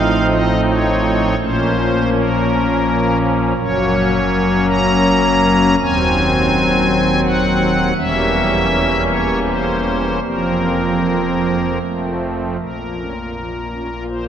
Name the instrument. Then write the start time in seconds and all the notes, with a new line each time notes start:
pipe organ
Already playing: A1 A2 F3 C4 D#4 F5
0.30 D#5
0.67 C#5
1.38 A#1 A#2 F3 A#3 C#4 C5
2.12 A#4
3.57 F#1 F#2 F#3 A#3 C#4 C#5
4.69 A#5
5.80 D#1 D#2 F#3 C4 G#5
7.24 F#5
7.96 E1 E2 G3 A#3 C#4 E5
9.07 C#5
9.44 C5
10.23 F1 F2 F3 A#3 C4 A#4
11.81 F1 F2 F3 A3 C4
12.59 A#1 A#2 A#4
12.78 A#3
12.96 C#4
13.15 F4
13.34 F3
13.53 A#3
13.71 C#4
13.90 F4
14.09 F3 C5